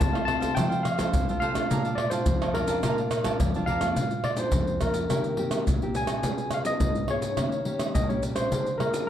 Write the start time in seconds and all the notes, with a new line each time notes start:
Already playing: A3 C4 F4 A4 C5 F5 A5
0.01 C3, pandeiro, maracas, surdo
0.13 A4 C5 F5, pandeiro, tamborim, maracas
0.25 A3 C4 F4 A4 C5 F5 A5, pandeiro, tamborim
0.29 F4
0.40 A4 C5 F5, pandeiro, maracas, surdo
0.55 F3 A3 C4 F4 A4 C5 F5 G5, pandeiro, tamborim, maracas, surdo
0.70 A4 C5 F5, pandeiro, maracas
0.83 F5, muted cavaquinho stroke, pandeiro, tamborim, maracas
0.98 A3 C4 F4 A4 C5 F5, pandeiro, tamborim, maracas, surdo
1.13 C3, pandeiro, maracas, surdo
1.28 A3 C4 F4 A4 C5 F5, pandeiro, maracas, surdo
1.40 F4 A4 C5 F5, pandeiro
1.54 A3 D4 F4 A4 C5 F5, pandeiro, tamborim, maracas, surdo
1.70 A#2 A#4 D5 F5 A5, pandeiro, maracas, surdo
1.85 D5 F5 A5, pandeiro, maracas
1.95 D5, pandeiro, tamborim
2.00 muted cavaquinho stroke
2.10 A3 D4 F4 C5 F5 A5, pandeiro, maracas
2.15 D5
2.26 F2, pandeiro, maracas, surdo
2.42 D5 F5 A5, pandeiro, tamborim, maracas
2.54 A3 D4 F4 A#4 D5 F5 A5, pandeiro, tamborim
2.68 D5 F5 A5, pandeiro, maracas, surdo
2.83 A#2 A3 D4 F4 A#4 D5 F5 A5, pandeiro, tamborim, maracas, surdo
2.98 D5 F5 A5, pandeiro, maracas
3.11 muted cavaquinho stroke, pandeiro, tamborim, maracas
3.24 A3 D4 F4 D5 F5 A5, pandeiro, tamborim, maracas, surdo
3.40 F2, pandeiro, maracas, surdo
3.54 A3 D4 F4 D5 F5 A5, pandeiro, maracas, surdo
3.66 A#4 D5 F5, pandeiro, surdo
3.70 A5
3.81 A#3 D4 F4 F5 A5, pandeiro, tamborim, maracas, surdo
3.85 D5
3.96 A#2, pandeiro, maracas, surdo
4.11 pandeiro, maracas
4.24 D5, pandeiro, tamborim
4.37 A#3 D4 F4 C5, pandeiro, maracas
4.52 F2, pandeiro, maracas, surdo
4.67 pandeiro, maracas
4.81 A#3 D4 F4 A#4, pandeiro, tamborim, maracas, surdo
4.94 pandeiro, maracas
5.10 D#3 A#3 C4 G4, pandeiro, tamborim, maracas, surdo
5.24 pandeiro, maracas
5.37 A#3 C4 G4, pandeiro
5.51 pandeiro, tamborim, maracas
5.67 A#2, pandeiro, maracas, surdo
5.82 A#3 C4 G4, pandeiro, maracas
5.95 G#5, pandeiro, maracas
6.07 pandeiro, tamborim, maracas
6.23 C#3 B3 F4 G#4, pandeiro, maracas, surdo
6.38 pandeiro, maracas
6.51 F5, pandeiro, tamborim, maracas
6.65 B3 F4 G#4 D#5, pandeiro, maracas
6.80 G#2, pandeiro, maracas, surdo
6.95 pandeiro, maracas
7.08 B3 F4 G#4 C#5, pandeiro, tamborim
7.22 pandeiro, maracas
7.37 D#3 A#3 C#4 G4, pandeiro, tamborim, maracas, surdo
7.52 pandeiro, maracas
7.65 A#3 C#4 G4, pandeiro
7.79 pandeiro, tamborim, maracas
7.94 A#2 D#5, pandeiro, maracas, surdo
8.09 A#3 C#4 G4 C#5, pandeiro, maracas
8.23 pandeiro, maracas
8.35 C5, pandeiro, tamborim, maracas
8.51 D3 A#3 F4 G#4, pandeiro, maracas, surdo
8.66 pandeiro, maracas
8.78 A#3 F4 G#4 A#4, pandeiro, tamborim
8.94 pandeiro, maracas